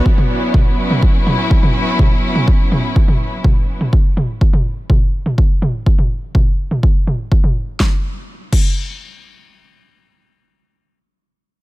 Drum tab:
CC |----------------|----------------|----------------|----------------|
SD |----------------|----------------|----------------|----------------|
T2 |-o--o--o--o--o--|o--o--o--o--o--o|--o--o--o--o--o-|-o--o--o--o--o--|
BD |o---o---o---o---|o---o---o---o---|o---o---o---o---|o---o---o---o---|

CC |------x---------|----------------|
SD |o---------------|----------------|
T2 |----------------|----------------|
BD |o-----o---------|----------------|